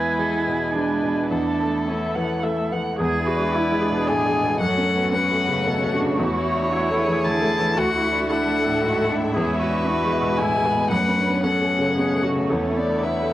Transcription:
0.00 1.27 E2 medium
0.00 1.30 G#3 medium
0.00 0.75 E4 loud
0.00 2.98 E4 medium
0.00 0.21 B4 medium
0.00 0.35 B4 medium
0.00 1.31 B4 medium
0.00 1.26 G#5 medium
0.19 0.63 G#3 medium
0.19 0.46 A4 medium
0.47 0.91 B2 soft
0.47 0.75 G#4 medium
0.73 1.19 G#3 soft
0.73 1.30 D4 medium
0.73 1.32 B4 medium
1.03 1.31 B2 soft
1.30 2.96 E2 medium
1.30 3.00 A3 medium
1.30 1.89 D4 medium
1.30 2.71 A4 medium
1.30 3.00 A4 medium
1.30 1.78 A5 medium
1.60 2.04 A4 soft
1.87 2.33 A3 soft
1.87 2.43 C#4 medium
1.87 2.16 E5 medium
2.15 2.61 E3 soft
2.15 2.45 F#5 medium
2.43 2.88 A3 soft
2.43 2.74 E5 medium
2.72 3.00 E3 soft
2.72 2.99 F#5 medium
2.98 4.57 E2 medium
2.98 4.56 G#3 medium
2.98 4.56 E4 medium
2.98 3.28 G#4 medium
2.98 3.56 G#4 medium
2.98 4.56 D5 medium
3.19 3.47 E4 medium
3.26 3.56 F#4 medium
3.26 4.09 B4 loud
3.36 3.54 D4 medium
3.54 3.83 E4 medium
3.54 3.82 E4 medium
3.54 3.83 E4 medium
3.72 4.01 G#3 medium
3.80 4.59 D4 medium
3.80 4.60 G#4 medium
3.90 4.18 B2 medium
4.07 4.26 A2 medium
4.07 4.60 G#5 loud
4.26 4.54 G#3 medium
4.42 4.60 B2 medium
4.60 6.15 F#2 medium
4.60 9.34 A3 medium
4.60 5.15 C#4 medium
4.60 6.19 F#4 medium
4.60 5.16 A4 medium
4.60 7.77 C#5 medium
4.60 5.12 F#5 loud
4.78 5.06 C#4 medium
4.96 5.13 B3 medium
5.12 5.39 B3 medium
5.12 5.41 C#4 medium
5.12 5.68 B4 medium
5.12 5.91 F#5 loud
5.31 5.59 A3 medium
5.39 5.67 A3 medium
5.48 5.77 C#3 medium
5.66 5.84 B2 medium
5.66 5.94 C#4 medium
5.66 5.95 A4 medium
5.84 6.12 A3 medium
5.93 6.21 D4 medium
5.93 6.74 F#4 medium
6.01 6.19 C#3 medium
6.19 7.73 E2 medium
6.19 6.73 E4 medium
6.19 10.91 E4 medium
6.38 6.66 E4 medium
6.46 7.26 C#5 loud
6.56 6.73 D4 medium
6.72 7.24 E4 medium
6.72 7.01 E4 medium
6.72 6.99 F#4 medium
6.91 7.18 A3 medium
6.98 7.76 G#4 loud
7.08 7.36 E3 medium
7.25 7.43 D3 medium
7.25 7.79 E4 medium
7.25 7.79 A5 loud
7.42 7.70 A3 medium
7.59 7.77 E3 medium
7.77 9.30 D2 medium
7.77 8.04 F#4 medium
7.77 8.31 F#4 medium
7.77 10.91 E5 medium
7.77 8.29 F#5 loud
7.96 8.23 E4 medium
8.03 8.31 E4 medium
8.12 8.30 D4 medium
8.29 8.83 D4 medium
8.29 8.58 E4 medium
8.29 9.34 A4 medium
8.29 9.07 F#5 loud
8.48 8.76 A3 medium
8.66 8.93 A2 medium
8.81 9.00 G#2 medium
8.81 9.10 F#4 medium
9.01 9.28 A3 medium
9.09 9.35 D4 medium
9.19 9.35 A2 medium
9.34 10.88 E2 medium
9.34 10.91 G#3 medium
9.34 9.86 C#4 medium
9.34 9.59 G#4 medium
9.53 9.79 E4 medium
9.59 10.40 F#4 medium
9.59 10.38 B4 loud
9.70 9.86 D4 medium
9.84 10.90 B3 medium
9.84 10.14 E4 medium
10.05 10.32 G#3 medium
10.21 10.49 B2 medium
10.37 10.56 A2 medium
10.37 10.67 E4 medium
10.37 10.90 G#5 loud
10.56 10.84 G#3 medium
10.65 11.45 B4 medium
10.74 10.91 B2 medium
10.91 12.45 F#2 medium
10.91 11.19 A3 medium
10.91 13.33 A3 medium
10.91 12.50 C#4 medium
10.91 13.33 C#5 medium
10.91 11.42 F#5 loud
11.08 11.36 C#4 medium
11.18 11.46 D4 medium
11.27 11.44 B3 medium
11.43 11.72 C#4 medium
11.43 12.00 C#4 medium
11.43 11.96 A4 medium
11.43 12.21 F#5 loud
11.62 11.89 A3 medium
11.79 12.07 C#3 medium
11.96 12.13 B2 medium
11.96 12.25 B3 medium
11.96 12.24 G#4 medium
12.14 12.42 A3 medium
12.22 12.52 A3 medium
12.22 12.51 F#4 medium
12.32 12.50 C#3 medium
12.49 13.33 E2 medium
12.49 12.79 C#4 medium
12.49 13.33 E4 medium
12.49 13.05 A4 medium
12.68 12.96 E4 medium
12.76 13.33 B3 medium
12.76 13.05 D5 medium
12.87 13.04 D4 soft
13.03 13.32 E4 medium
13.03 13.33 B4 medium
13.03 13.33 E5 medium
13.22 13.33 A3 medium

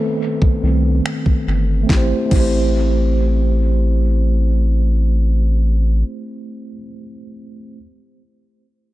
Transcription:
0.00 0.62 D#3 medium
0.00 0.64 A3 medium
0.00 1.91 B3 medium
0.00 0.63 C4 medium
0.00 1.43 A4 medium
0.00 1.91 B4 medium
0.00 downlifter medium
0.42 kick medium
0.63 1.01 C2 medium
0.63 1.01 D#3 soft
0.63 1.01 A3 soft
0.63 1.02 C4 soft
1.06 finger snap loud
1.26 kick medium
1.47 1.85 G1 medium
1.83 2.09 A3 medium
1.83 2.11 C4 medium
1.89 2.13 A1 loud
1.89 2.13 E4 medium
1.89 kick loud
1.89 snare medium
1.94 2.15 G4 medium
1.94 2.17 C5 medium
2.26 6.70 A3 medium
2.26 6.72 C4 medium
2.31 6.03 A1 medium
2.31 6.74 E4 medium
2.31 kick loud
2.31 crash medium
2.36 6.75 G4 medium
2.36 6.77 C5 medium

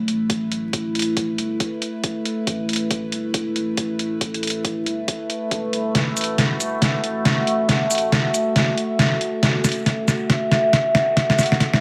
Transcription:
0.00 11.80 A3 medium
0.00 5.91 E4 medium
0.00 5.94 B4 medium
0.08 1.37 A1 medium
0.08 closed hi-hat soft
0.30 kick medium
0.30 closed hi-hat medium
0.52 closed hi-hat soft
0.73 kick loud
0.73 closed hi-hat medium
0.95 closed hi-hat soft
0.99 closed hi-hat medium
1.02 closed hi-hat medium
1.17 kick medium
1.17 closed hi-hat medium
1.38 1.59 G1 medium
1.38 closed hi-hat soft
1.60 kick loud
1.60 closed hi-hat medium
1.82 closed hi-hat soft
2.04 kick loud
2.04 closed hi-hat medium
2.25 closed hi-hat medium
2.47 3.11 A1 loud
2.47 kick loud
2.47 closed hi-hat medium
2.69 closed hi-hat soft
2.73 closed hi-hat medium
2.76 closed hi-hat medium
2.91 kick loud
2.91 closed hi-hat medium
3.12 3.33 G1 medium
3.12 closed hi-hat medium
3.34 3.57 E1 medium
3.34 kick loud
3.34 closed hi-hat medium
3.56 4.85 A1 medium
3.56 closed hi-hat soft
3.77 kick loud
3.77 closed hi-hat medium
3.99 closed hi-hat medium
4.21 kick medium
4.21 closed hi-hat medium
4.34 closed hi-hat soft
4.43 closed hi-hat soft
4.47 closed hi-hat medium
4.50 closed hi-hat medium
4.65 kick loud
4.65 closed hi-hat medium
4.86 5.07 G1 medium
4.86 closed hi-hat medium
5.08 kick loud
5.08 closed hi-hat medium
5.30 closed hi-hat soft
5.51 5.72 E1 loud
5.51 kick loud
5.51 closed hi-hat medium
5.73 5.94 G1 medium
5.73 closed hi-hat soft
5.95 6.59 A1 loud
5.95 11.80 F#4 medium
5.95 11.80 E5 medium
5.95 kick loud
5.95 snare medium
5.95 closed hi-hat medium
6.17 closed hi-hat soft
6.17 shaker medium
6.21 closed hi-hat medium
6.24 closed hi-hat medium
6.38 kick loud
6.38 snare soft
6.38 closed hi-hat medium
6.60 6.81 G1 medium
6.60 closed hi-hat medium
6.60 shaker medium
6.82 7.05 E1 medium
6.82 kick loud
6.82 snare medium
6.82 closed hi-hat medium
7.04 8.33 A1 medium
7.04 closed hi-hat soft
7.25 kick loud
7.25 snare medium
7.25 closed hi-hat medium
7.47 closed hi-hat soft
7.69 kick loud
7.69 snare medium
7.69 closed hi-hat medium
7.91 closed hi-hat soft
7.91 shaker medium
7.95 closed hi-hat medium
7.98 closed hi-hat medium
8.12 kick loud
8.12 snare medium
8.12 closed hi-hat medium
8.34 8.54 G1 medium
8.34 closed hi-hat medium
8.34 shaker medium
8.56 kick loud
8.56 snare medium
8.56 closed hi-hat medium
8.78 closed hi-hat soft
8.99 kick loud
8.99 snare medium
8.99 closed hi-hat medium
9.21 closed hi-hat medium
9.43 10.07 A1 loud
9.43 kick loud
9.43 snare medium
9.43 closed hi-hat medium
9.64 snare medium
9.64 closed hi-hat soft
9.64 shaker medium
9.69 closed hi-hat medium
9.72 closed hi-hat medium
9.86 kick loud
9.86 snare medium
9.86 closed hi-hat medium
10.08 10.28 G1 medium
10.08 snare medium
10.08 closed hi-hat medium
10.08 shaker medium
10.30 10.53 E1 medium
10.30 kick loud
10.30 snare medium
10.30 closed hi-hat medium
10.51 11.80 A1 medium
10.51 snare medium
10.51 closed hi-hat medium
10.73 kick loud
10.73 snare medium
10.73 closed hi-hat medium
10.95 snare medium
10.95 closed hi-hat medium
11.17 kick loud
11.17 snare medium
11.17 closed hi-hat medium
11.30 snare medium
11.30 closed hi-hat soft
11.39 snare medium
11.39 closed hi-hat medium
11.39 shaker medium
11.43 closed hi-hat medium
11.46 closed hi-hat medium
11.52 snare medium
11.60 kick loud
11.60 snare medium
11.60 closed hi-hat medium
11.73 snare medium

